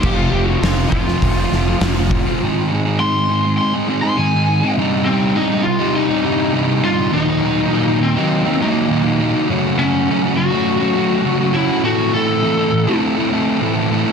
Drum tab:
CC |x---------------|----------------|----------------|----------------|
HH |----o---o---o---|----------------|----------------|----------------|
SD |----o--o--o-o---|----------------|----------------|----------------|
BD |o-----o-o-----o-|----------------|----------------|----------------|

CC |----------------|----------------|
HH |----------------|----------------|
SD |----------------|----------------|
BD |----------------|----------------|